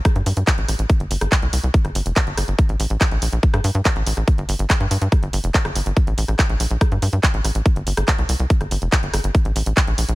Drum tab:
HH |xxoxxxoxxxoxxxox|xxoxxxoxxxoxxxox|xxoxxxoxxxoxxxox|xxoxxxoxxxoxxxox|
CP |----x-------x---|----x-------x---|----x-------x---|----x-------x---|
SD |r-----r----r----|-r----r-----r---|-r-----r----r---|r----r-----r----|
BD |o---o---o---o---|o---o---o---o---|o---o---o---o---|o---o---o---o---|

HH |xxoxxxoxxxoxxxox|xxoxxxoxxxoxxxox|
CP |----x-------x---|----x-------x---|
SD |r-----r----r----|-r----r-----r---|
BD |o---o---o---o---|o---o---o---o---|